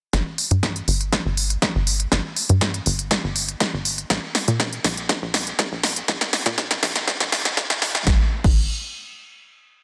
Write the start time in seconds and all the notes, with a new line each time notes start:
0.13 G1, kick, snare, closed hi-hat
0.38 open hi-hat
0.51 G2, closed hi-hat
0.63 kick, snare, closed hi-hat
0.76 closed hi-hat
0.88 G1, open hi-hat
1.01 closed hi-hat
1.13 kick, snare, closed hi-hat
1.25 G1
1.37 open hi-hat
1.50 closed hi-hat
1.62 kick, snare, closed hi-hat
1.75 G1
1.87 open hi-hat
2.00 closed hi-hat
2.12 G1, kick, snare, closed hi-hat
2.36 open hi-hat
2.49 G2, closed hi-hat
2.61 kick, snare, closed hi-hat
2.74 closed hi-hat
2.86 G1, open hi-hat
2.99 closed hi-hat
3.11 kick, snare, closed hi-hat
3.24 G1
3.36 open hi-hat
3.49 closed hi-hat
3.60 kick, snare, closed hi-hat
3.73 G1
3.85 open hi-hat
3.98 closed hi-hat
4.10 A#1, kick, snare, closed hi-hat
4.35 snare, open hi-hat
4.48 A#2, closed hi-hat
4.60 kick, snare, closed hi-hat
4.73 closed hi-hat
4.84 A#1, snare, open hi-hat
4.97 closed hi-hat
5.09 kick, snare, closed hi-hat
5.22 A#1
5.34 snare, open hi-hat
5.47 closed hi-hat
5.59 kick, snare, closed hi-hat
5.72 A#1
5.83 snare, open hi-hat
5.96 closed hi-hat
6.08 A#1, kick, snare, closed hi-hat
6.21 snare
6.33 snare, open hi-hat
6.46 A#2, snare, closed hi-hat
6.58 kick, snare, closed hi-hat
6.71 snare, closed hi-hat
6.83 A#1, snare, open hi-hat
6.96 snare, closed hi-hat
7.08 kick, snare, closed hi-hat
7.20 A#1, snare
7.32 snare, open hi-hat
7.45 snare, closed hi-hat
7.57 kick, snare, closed hi-hat
7.70 A#2, snare, closed hi-hat
7.82 snare, open hi-hat
7.95 snare
8.07 G1, kick, snare
8.44 G1, kick, crash